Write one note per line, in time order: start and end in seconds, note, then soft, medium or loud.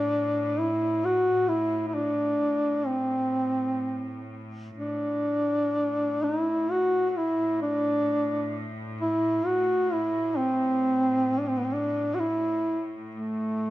0.00 4.77 A2 soft
0.00 0.61 D4 loud
0.59 1.06 E4 medium
1.05 1.50 F#4 medium
1.49 1.87 E4 medium
1.88 1.96 E4 medium
1.95 2.88 D4 medium
2.86 4.31 C4 medium
4.78 13.70 A2 soft
4.78 6.25 D4 medium
6.24 6.73 E4 medium
6.71 7.11 F#4 medium
7.11 7.18 F#4 medium
7.17 7.62 E4 medium
7.62 8.72 D4 loud
9.01 9.48 E4 medium
9.46 9.94 F#4 medium
9.93 10.39 E4 medium
10.37 11.41 C4 medium
11.39 11.50 D4 medium
11.49 11.60 C4 medium
11.58 11.67 B3 medium
11.66 11.75 C4 medium
11.74 12.16 D4 medium
12.15 12.21 F#4 medium
12.20 12.88 E4 medium
13.15 13.70 A3 medium